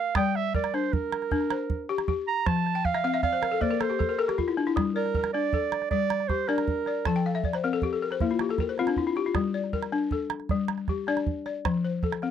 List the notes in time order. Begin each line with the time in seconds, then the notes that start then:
Already playing: A#4 F5
0.15 G3 D5 G5, calabash thump, calabash click
0.35 E5, calabash click
0.54 A#4 D5, calabash thump, calabash click
0.64 calabash click
0.74 D4 C5, calabash click
0.93 A#4, calabash thump
1.12 calabash click
1.22 calabash click
1.31 D4, calabash thump
1.41 calabash click
1.50 C5, calabash click
1.70 calabash thump
1.89 G4
1.98 calabash click
2.08 G4, calabash thump
2.28 A#5
2.46 F3 A5, calabash thump, calabash click
2.56 calabash click
2.66 calabash click
2.75 G5
2.85 F5, calabash thump
2.94 E5, calabash click
3.04 C4 F5, calabash click
3.14 E5, calabash click
3.23 D5 F5, calabash thump, calabash click
3.33 C5
3.42 A#4, calabash click
3.52 A4
3.61 A#3 C5 D5, calabash thump
3.71 A#4
3.80 A4 C5, calabash click
3.90 G4, calabash click
3.99 A4, calabash thump, calabash click
4.09 A#4
4.19 A4 A#4
4.28 G4, calabash click
4.38 F4, calabash thump
4.48 E4, calabash click
4.57 D4
4.67 E4, calabash click
4.76 G3, calabash thump, calabash click
4.96 A#4 D5
5.06 calabash click
5.15 A#4, calabash thump
5.24 calabash click
5.33 D4 D5
5.53 A4, calabash thump
5.72 calabash click
5.82 calabash click
5.90 G3 D5, calabash thump, calabash click
6.10 calabash click
6.20 calabash click
6.28 G4 C5, calabash thump, calabash click
6.48 D4 A#4 D5, calabash click
6.58 calabash click
6.68 calabash thump
6.86 D5, calabash click
7.05 F3 A4 A5, calabash thump, calabash click
7.16 G5
7.26 F5
7.35 E5, calabash click
7.44 D5, calabash thump
7.53 C5, calabash click
7.64 C4 A#4
7.73 A4
7.82 G4, calabash thump
7.93 A4
8.02 A#4
8.11 C5, calabash click
8.20 A#3 E4, calabash thump, calabash click
8.31 F4
8.39 G4, calabash click
8.49 A4, calabash click
8.58 A#4, calabash thump, calabash click
8.69 C5
8.78 C4 F4, calabash click
8.87 D4, calabash click
8.97 E4, calabash thump
9.07 F4
9.16 G4, calabash click
9.26 F4
9.35 G3, calabash thump, calabash click
9.54 D5
9.64 calabash click
9.73 A#4, calabash thump
9.83 calabash click
9.92 D4
10.11 A4, calabash thump
10.30 calabash click
10.40 calabash click
10.49 G3, calabash thump, calabash click
10.68 calabash click
10.78 calabash click
10.88 G4, calabash thump, calabash click
11.07 D4 D5, calabash click
11.17 calabash click
11.27 calabash thump
11.46 D5, calabash click
11.65 F3, calabash thump, calabash click
11.85 C5
12.03 A4, calabash thump
12.12 calabash click
12.22 C4, calabash click